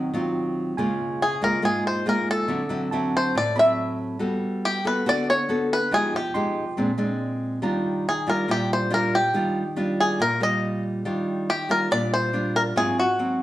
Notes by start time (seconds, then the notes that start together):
Already playing: D#3 F#4 G5
0.14 F#3 C4 F4
0.77 C#3 G#3 A#3 F4 G#5
1.22 G#4
1.42 G#3 A#3 F4 A#4
1.62 G#2 G#3 A#3 F4 G#4
1.87 C5
2.06 G#3 A#3 F4 A#4
2.31 A4
2.48 D3 F#3 C4 E4
2.69 F#3 C4 E4
2.91 F#3 C4 E4 A5
3.17 C5
3.35 A2 D5
3.55 F#3 C4 E4 E5 B5
4.19 G3 B3 F#4 A4
4.65 G4
4.85 B3 F#4 A4 B4
5.06 D3 B3 F#4 A4 D5
5.30 C#5
5.49 B3 F#4 A4
5.73 B4
5.91 F3 G#3 D#4 G4 G#4
6.16 G4
6.34 G#3 D#4 G4 C6
6.77 A#2 G#3 C4 D4
6.98 G#3 C4 D4
7.62 D#3 G3 D4 F4 A#5
8.09 G#4
8.27 G3 D4 F4 A#4
8.48 A#2 G3 D4 F4 G4
8.73 C5
8.90 G3 D4 F4 A#4
9.15 G4
9.34 D#3 G3 D4 F4
9.76 G3 D4 F4
10.00 G#4
10.19 A#2 A#4
10.40 G3 F4 D#5
11.05 D#3 G3 D4 F4
11.50 G4
11.69 G3 D4 F4 A#4
11.91 A#2 G3 D4 F4 D5
12.14 C5
12.33 G3 D4 F4
12.56 A#4
12.76 G#2 F#3 C4 F4 G#4
12.99 F#4
13.19 F#3 C4